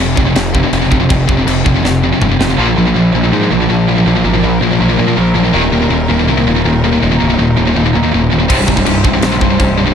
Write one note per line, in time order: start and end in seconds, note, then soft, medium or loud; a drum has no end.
0.00 0.13 F1 medium
0.00 0.15 F2 medium
0.00 0.14 C3 loud
0.16 0.32 F1 loud
0.16 0.25 F2 medium
0.16 0.24 C3 medium
0.16 kick medium
0.26 0.34 F2 medium
0.26 0.35 C3 medium
0.35 0.64 F1 loud
0.35 0.52 F2 medium
0.35 0.53 C3 medium
0.35 snare loud
0.35 crash medium
0.54 0.62 F2 medium
0.54 0.62 C3 medium
0.54 kick medium
0.63 0.72 F2 medium
0.63 0.72 C3 medium
0.72 0.87 F1 medium
0.72 0.81 F2 medium
0.72 0.80 C3 medium
0.72 crash medium
0.81 0.90 F2 medium
0.81 0.89 C3 medium
0.91 1.06 F1 medium
0.91 0.99 F2 medium
0.91 0.99 C3 medium
0.91 kick loud
1.00 1.08 F2 medium
1.00 1.08 C3 medium
1.09 1.24 F1 medium
1.09 1.26 F2 medium
1.09 1.26 C3 medium
1.09 kick loud
1.09 crash medium
1.28 1.43 F1 loud
1.28 1.36 F2 medium
1.28 1.36 C3 medium
1.28 kick medium
1.37 1.45 F2 medium
1.37 1.46 C3 medium
1.46 1.61 F1 loud
1.46 1.63 F2 loud
1.46 1.64 C3 medium
1.46 crash medium
1.66 1.80 F1 loud
1.66 1.75 F2 medium
1.66 1.74 C3 medium
1.66 kick medium
1.76 1.84 F2 medium
1.76 1.84 C3 medium
1.83 2.12 F1 medium
1.83 2.01 F2 medium
1.83 2.01 C3 medium
1.83 snare medium
2.04 2.12 F2 medium
2.04 2.11 C3 medium
2.13 2.21 F2 medium
2.13 2.21 C3 medium
2.21 2.35 F1 loud
2.21 2.30 F2 medium
2.21 2.30 C3 medium
2.21 mid tom medium
2.31 2.40 F2 medium
2.31 2.39 C3 medium
2.39 2.53 F1 medium
2.39 2.49 F2 medium
2.39 2.49 C3 medium
2.39 snare medium
2.50 2.58 F2 medium
2.50 2.59 C3 medium
2.58 2.74 A#1 loud
2.58 2.66 A#2 medium
2.58 5.51 F3 loud
2.58 2.67 F3 loud
2.58 2.67 A#3 loud
2.58 5.51 D4 medium
2.58 8.45 A#4 loud
2.68 2.77 A#2 medium
2.68 2.77 F3 medium
2.76 2.93 A#1 loud
2.76 2.86 A#2 medium
2.76 2.86 F3 medium
2.87 2.94 A#2 medium
2.87 2.95 F3 medium
2.94 3.11 A#1 loud
2.94 3.12 A#2 medium
2.94 3.12 F3 loud
3.13 3.30 A#1 loud
3.13 3.23 A#2 medium
3.13 3.23 F3 medium
3.24 3.32 A#2 medium
3.24 3.32 F3 medium
3.32 3.48 G#2 loud
3.32 3.42 A#2 medium
3.32 3.42 F3 loud
3.43 3.51 A#2 medium
3.43 3.51 F3 medium
3.51 3.67 A#1 medium
3.51 3.61 A#2 medium
3.51 3.60 F3 medium
3.62 3.68 A#2 medium
3.62 3.69 F3 medium
3.69 4.01 A#1 medium
3.69 3.86 A#2 medium
3.69 3.86 F3 medium
3.89 3.97 A#2 medium
3.89 3.97 F3 medium
3.98 4.06 A#2 medium
3.98 4.06 F3 medium
4.06 4.22 A#1 medium
4.06 4.15 A#2 medium
4.06 4.15 F3 medium
4.16 4.24 A#2 medium
4.16 4.23 F3 medium
4.24 4.40 G#1 loud
4.24 4.33 A#2 medium
4.24 4.33 F3 medium
4.34 4.42 A#2 medium
4.34 4.43 F3 medium
4.43 4.59 A#1 medium
4.43 4.60 A#2 medium
4.43 4.60 F3 loud
4.61 4.77 A#1 loud
4.61 4.71 A#2 medium
4.61 4.71 F3 medium
4.72 4.81 A#2 medium
4.72 4.81 F3 medium
4.79 4.96 A#1 medium
4.79 4.89 A#2 medium
4.79 4.89 F3 medium
4.90 4.98 A#2 medium
4.90 4.98 F3 medium
4.99 5.15 A#2 medium
4.99 5.07 A#2 medium
4.99 5.07 F3 medium
5.08 5.16 A#2 medium
5.08 5.16 F3 medium
5.17 5.33 A#1 medium
5.17 5.33 A#2 medium
5.17 5.33 F3 medium
5.35 5.51 A#1 medium
5.35 5.43 A#2 medium
5.35 5.43 F3 medium
5.44 5.52 A#2 medium
5.44 5.53 F3 medium
5.53 5.69 D#1 loud
5.53 5.61 D#2 medium
5.53 5.61 A#2 loud
5.53 5.62 D#3 loud
5.53 9.94 G3 medium
5.53 9.94 D#4 medium
5.62 5.72 D#2 medium
5.62 5.71 A#2 medium
5.71 5.88 D#1 loud
5.71 5.81 D#2 medium
5.71 5.80 A#2 medium
5.82 5.89 D#2 medium
5.82 5.90 A#2 medium
5.90 6.06 D#1 loud
5.90 6.07 D#2 medium
5.90 6.07 A#2 loud
6.09 6.25 D#1 loud
6.09 6.19 D#2 medium
6.09 6.18 A#2 medium
6.19 6.27 D#2 medium
6.19 6.28 A#2 medium
6.28 6.44 C2 loud
6.28 6.37 D#2 loud
6.28 6.36 A#2 loud
6.37 6.46 D#2 medium
6.37 6.46 A#2 medium
6.46 6.62 D#1 loud
6.46 6.55 D#2 medium
6.46 6.55 A#2 medium
6.56 6.64 D#2 medium
6.56 6.65 A#2 medium
6.65 6.97 D#1 medium
6.65 6.81 D#2 medium
6.65 6.82 A#2 medium
6.84 6.92 D#2 medium
6.84 6.92 A#2 medium
6.93 7.01 D#2 medium
6.93 7.02 A#2 medium
7.02 7.18 D#1 loud
7.02 7.11 D#2 medium
7.02 7.10 A#2 loud
7.12 7.19 D#2 medium
7.12 7.19 A#2 medium
7.20 7.36 C1 medium
7.20 7.29 D#2 medium
7.20 7.29 A#2 medium
7.30 7.38 D#2 medium
7.30 7.38 A#2 medium
7.39 7.55 D#1 loud
7.39 7.55 D#2 medium
7.39 7.55 A#2 loud
7.57 7.74 D#1 loud
7.57 7.66 D#2 medium
7.57 7.66 A#2 medium
7.67 7.75 D#2 medium
7.67 7.75 A#2 medium
7.76 7.92 D#1 medium
7.76 7.85 D#2 medium
7.76 7.84 A#2 loud
7.85 7.94 D#2 medium
7.85 7.94 A#2 medium
7.95 8.03 D#2 medium
7.95 8.11 D#2 medium
7.95 8.02 A#2 medium
8.03 8.12 D#2 medium
8.03 8.12 A#2 medium
8.13 8.29 D#1 loud
8.13 8.29 D#2 medium
8.13 8.30 A#2 medium
8.32 8.47 D#1 medium
8.32 8.39 D#2 medium
8.32 8.38 A#2 medium
8.40 8.48 D#2 medium
8.40 8.49 A#2 medium
8.48 8.65 C1 medium
8.48 8.57 C2 medium
8.48 8.56 G2 loud
8.48 8.57 C3 loud
8.48 9.94 C5 medium
8.48 kick loud
8.48 crash loud
8.48 china medium
8.58 8.66 C2 medium
8.58 8.66 G2 medium
8.67 8.84 C1 medium
8.67 8.75 C2 medium
8.67 8.75 G2 medium
8.67 kick loud
8.76 8.84 C2 medium
8.76 8.85 G2 medium
8.76 kick loud
8.86 9.03 C1 loud
8.86 9.02 C2 medium
8.86 9.02 G2 loud
8.86 china medium
9.04 9.20 C1 loud
9.04 9.13 C2 medium
9.04 9.12 G2 medium
9.04 kick loud
9.13 9.21 C2 medium
9.13 9.22 G2 medium
9.22 9.39 A#1 medium
9.22 9.32 C2 medium
9.22 9.31 G2 medium
9.22 snare loud
9.22 china medium
9.32 9.40 C2 medium
9.32 9.40 G2 medium
9.41 9.58 C1 medium
9.41 9.49 C2 medium
9.41 9.49 G2 medium
9.41 kick loud
9.50 9.58 C2 medium
9.50 9.58 G2 medium
9.59 9.92 C1 medium
9.59 9.76 C2 medium
9.59 9.76 G2 medium
9.59 kick medium
9.59 china medium
9.78 9.86 C2 medium
9.78 9.85 G2 medium
9.87 9.94 C2 medium
9.87 9.94 G2 medium